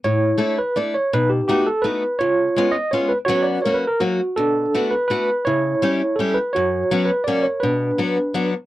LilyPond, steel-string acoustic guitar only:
\new Staff \with { instrumentName = "Steel-string acoustic guitar" } { \time 3/4 \key b \minor \tempo 4 = 166 a,4 <a d' e' a'>8 r8 <a d' e' a'>8 r8 | b,4 <a b dis' fis'>8 r8 <a b dis' fis'>8 r8 | cis4 <gis b cis' eis'>8 r8 <gis b cis' eis'>8 r8 | <fis b cis' fis'>4 <fis ais cis' fis'>8 r8 <fis ais cis' fis'>8 r8 |
b,4 <a b d' fis'>8 r8 <a b d' fis'>8 r8 | cis4 <g cis' e' g'>8 r8 <g cis' e' g'>8 r8 | fis,4 <fis b cis' fis'>8 r8 <fis ais cis' fis'>8 r8 | b,4 <fis b d' fis'>8 r8 <fis b d' fis'>8 r8 | }